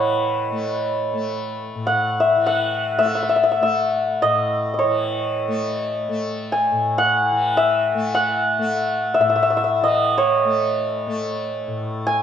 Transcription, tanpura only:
0, 0, Header, 1, 2, 480
1, 0, Start_track
1, 0, Tempo, 500000
1, 11738, End_track
2, 0, Start_track
2, 0, Title_t, "Tanpura"
2, 0, Program_c, 0, 104
2, 0, Note_on_c, 0, 45, 56
2, 0, Note_on_c, 0, 52, 55
2, 0, Note_on_c, 0, 57, 58
2, 491, Note_off_c, 0, 57, 0
2, 491, Note_on_c, 0, 57, 56
2, 1085, Note_off_c, 0, 57, 0
2, 1085, Note_on_c, 0, 57, 54
2, 1679, Note_off_c, 0, 45, 0
2, 1683, Note_on_c, 0, 45, 54
2, 2264, Note_off_c, 0, 52, 0
2, 2268, Note_on_c, 0, 52, 56
2, 2856, Note_off_c, 0, 57, 0
2, 2856, Note_on_c, 0, 57, 58
2, 3463, Note_off_c, 0, 57, 0
2, 3463, Note_on_c, 0, 57, 57
2, 4049, Note_off_c, 0, 45, 0
2, 4053, Note_on_c, 0, 45, 57
2, 4648, Note_off_c, 0, 52, 0
2, 4652, Note_on_c, 0, 52, 56
2, 5260, Note_off_c, 0, 57, 0
2, 5260, Note_on_c, 0, 57, 59
2, 5843, Note_off_c, 0, 57, 0
2, 5843, Note_on_c, 0, 57, 58
2, 6446, Note_off_c, 0, 45, 0
2, 6450, Note_on_c, 0, 45, 61
2, 7018, Note_off_c, 0, 52, 0
2, 7022, Note_on_c, 0, 52, 54
2, 7626, Note_off_c, 0, 57, 0
2, 7626, Note_on_c, 0, 57, 61
2, 8242, Note_off_c, 0, 57, 0
2, 8242, Note_on_c, 0, 57, 62
2, 8821, Note_off_c, 0, 45, 0
2, 8825, Note_on_c, 0, 45, 60
2, 9420, Note_off_c, 0, 52, 0
2, 9423, Note_on_c, 0, 52, 58
2, 10030, Note_off_c, 0, 57, 0
2, 10030, Note_on_c, 0, 57, 57
2, 10628, Note_off_c, 0, 57, 0
2, 10628, Note_on_c, 0, 57, 60
2, 11204, Note_off_c, 0, 45, 0
2, 11208, Note_on_c, 0, 45, 56
2, 11738, Note_off_c, 0, 45, 0
2, 11738, Note_off_c, 0, 52, 0
2, 11738, Note_off_c, 0, 57, 0
2, 11738, End_track
0, 0, End_of_file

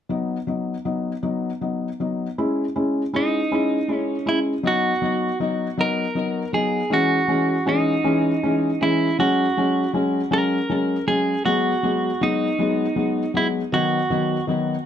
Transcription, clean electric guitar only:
0, 0, Header, 1, 2, 480
1, 0, Start_track
1, 0, Key_signature, 5, "major"
1, 0, Tempo, 756620
1, 63, Time_signature, 6, 3, 24, 8
1, 9425, End_track
2, 0, Start_track
2, 0, Title_t, "Clean electric guitar"
2, 0, Program_c, 0, 27
2, 2006, Note_on_c, 0, 63, 61
2, 2514, Note_off_c, 0, 63, 0
2, 2514, Note_on_c, 0, 61, 61
2, 2719, Note_on_c, 0, 64, 66
2, 2737, Note_off_c, 0, 61, 0
2, 2782, Note_off_c, 0, 64, 0
2, 2965, Note_on_c, 0, 66, 72
2, 3410, Note_off_c, 0, 66, 0
2, 3684, Note_on_c, 0, 70, 70
2, 4148, Note_off_c, 0, 70, 0
2, 4151, Note_on_c, 0, 68, 66
2, 4395, Note_off_c, 0, 68, 0
2, 4399, Note_on_c, 0, 66, 78
2, 4876, Note_on_c, 0, 63, 63
2, 4886, Note_off_c, 0, 66, 0
2, 5600, Note_on_c, 0, 64, 64
2, 5612, Note_off_c, 0, 63, 0
2, 5833, Note_off_c, 0, 64, 0
2, 5835, Note_on_c, 0, 66, 68
2, 6284, Note_off_c, 0, 66, 0
2, 6556, Note_on_c, 0, 70, 74
2, 7025, Note_off_c, 0, 70, 0
2, 7028, Note_on_c, 0, 68, 76
2, 7248, Note_off_c, 0, 68, 0
2, 7267, Note_on_c, 0, 66, 73
2, 7758, Note_on_c, 0, 63, 69
2, 7759, Note_off_c, 0, 66, 0
2, 8444, Note_off_c, 0, 63, 0
2, 8481, Note_on_c, 0, 64, 60
2, 8543, Note_off_c, 0, 64, 0
2, 8715, Note_on_c, 0, 66, 66
2, 9162, Note_off_c, 0, 66, 0
2, 9425, End_track
0, 0, End_of_file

